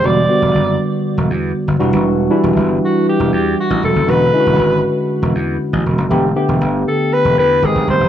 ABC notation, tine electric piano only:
X:1
M:4/4
L:1/16
Q:1/4=119
K:Edor
V:1 name="Tine electric piano"
[D,G,B,F]2 [D,G,B,F]4- [D,G,B,F] z6 z [E,G,DF]2- | [E,G,DF]2 [E,G,DE]4- [E,G,DE] z8 z | [D,^G,CF]2 [D,G,CEF]4- [D,G,CEF] z8 z | [D,A,B,G]2 [D,A,B,G]4- [D,A,B,G] z4 z [^D,^G,^B,=G]4 |]